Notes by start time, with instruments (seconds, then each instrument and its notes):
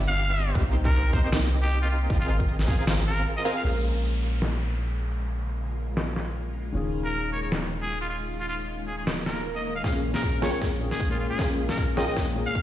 Already playing: 808-style bass G1, supersaw synth B3 D4 F4 G4 E5
0.08 muted trumpet F5, closed hi-hat
0.16 closed hi-hat
0.36 closed hi-hat
0.55 808-style bass C2, supersaw synth A#3 C4 D#4 G4 C5, kick, closed hi-hat
0.74 closed hi-hat
0.85 muted trumpet A#4, kick, closed hi-hat
0.94 closed hi-hat
1.13 808-style bass C2, supersaw synth A#3 C4 D#4 G4 D#5, muted trumpet C5, kick, closed hi-hat
1.24 muted trumpet C5
1.32 snare, closed hi-hat
1.52 closed hi-hat
1.62 muted trumpet G4, closed hi-hat
1.71 closed hi-hat
1.82 muted trumpet F4
1.90 muted trumpet F4, closed hi-hat
2.10 808-style bass G#1, supersaw synth C4 F4 G#4 A#4 D#5, kick, closed hi-hat
2.20 muted trumpet F4
2.29 muted trumpet F4, closed hi-hat
2.40 kick, closed hi-hat
2.49 closed hi-hat
2.59 snare
2.68 808-style bass G#1, supersaw synth C4 F4 G#4 A#4 F5, muted trumpet G#4, kick, closed hi-hat
2.78 muted trumpet G#4
2.87 snare, closed hi-hat
3.07 muted trumpet A#4, closed hi-hat
3.17 closed hi-hat
3.26 closed hi-hat
3.37 muted trumpet D#5
3.45 supersaw synth C4 F4 G#4 A#4 F5, muted trumpet D#5, closed hi-hat
3.51 closed hi-hat
3.56 muted trumpet F5, closed hi-hat
3.60 felt piano A#2 G#3, closed hi-hat
3.65 808-style bass A#1, ambient pad C#3 G#3 A#3 F4, felt piano C#4 A#4, muted trumpet F5, downlifter
3.84 closed hi-hat
3.95 closed hi-hat
4.03 closed hi-hat
4.23 closed hi-hat
4.28 closed hi-hat
4.42 snare, closed hi-hat
4.61 closed hi-hat
4.72 closed hi-hat
4.81 closed hi-hat
5.00 closed hi-hat
5.20 closed hi-hat
5.39 closed hi-hat
5.49 closed hi-hat
5.58 closed hi-hat
5.78 closed hi-hat
5.83 closed hi-hat
5.97 snare, closed hi-hat
6.16 snare, closed hi-hat
6.27 closed hi-hat
6.36 closed hi-hat
6.55 closed hi-hat
6.72 808-style bass D#1, felt piano D#3 C#4 F4 G#4, ambient pad D#3 C#4, closed hi-hat
6.94 closed hi-hat
7.04 muted trumpet A#4, closed hi-hat
7.13 closed hi-hat
7.32 muted trumpet C#5, closed hi-hat
7.38 closed hi-hat
7.43 muted trumpet C#5
7.52 snare, closed hi-hat
7.71 closed hi-hat
7.82 muted trumpet G#4, closed hi-hat
7.91 closed hi-hat
8.01 muted trumpet F4
8.10 muted trumpet F4, closed hi-hat
8.29 closed hi-hat
8.40 muted trumpet F4
8.49 muted trumpet F4, closed hi-hat
8.59 closed hi-hat
8.68 closed hi-hat
8.87 muted trumpet G#4, closed hi-hat
8.93 closed hi-hat
8.98 muted trumpet G#4
9.07 snare, closed hi-hat, swell
9.26 muted trumpet A#4, snare, closed hi-hat
9.37 closed hi-hat
9.46 closed hi-hat
9.56 muted trumpet D#5
9.65 muted trumpet D#5, closed hi-hat
9.76 muted trumpet F5
9.83 808-style bass A#1, felt piano A#2 A#3 C#4 G#4, ambient pad C#3 G#3 A#3 F4, supersaw synth C#4 F4 G#4 A#4 F5, muted trumpet F5, kick, snare, closed hi-hat
10.03 closed hi-hat
10.13 felt piano A#2 A#3 C#4 G#4, muted trumpet A#4, snare, closed hi-hat
10.23 kick, closed hi-hat
10.41 808-style bass A#1, felt piano A#2 A#3 C#4 G5, supersaw synth C#4 F4 G#4 A#4 G5, muted trumpet C#5, snare, closed hi-hat
10.48 closed hi-hat
10.52 muted trumpet C#5
10.62 kick, snare, closed hi-hat
10.80 felt piano A#2 A#3 C#4 G#4, closed hi-hat
10.91 muted trumpet G#4, snare, closed hi-hat
11.00 kick, closed hi-hat
11.09 felt piano A#2 A#3 C#4 G#4, muted trumpet F4
11.20 muted trumpet F4, closed hi-hat
11.30 muted trumpet G#4
11.38 felt piano A#2 A#3 C#4 G#4, supersaw synth C#4 F4 G#4 A#4 F5, kick, snare, closed hi-hat
11.58 closed hi-hat
11.68 felt piano A#2 A#3 C#4 G#4, muted trumpet A#4, snare, closed hi-hat
11.78 kick, closed hi-hat
11.96 808-style bass A#1, felt piano A#2 A#3 C#4 G5, supersaw synth C#4 F4 G#4 A#4 G5, muted trumpet D#5, snare, closed hi-hat
12.03 closed hi-hat
12.07 muted trumpet D#5
12.17 kick, snare, closed hi-hat
12.35 felt piano A#2 A#3 C#4 G#4, closed hi-hat
12.46 muted trumpet F5, closed hi-hat
12.55 kick, closed hi-hat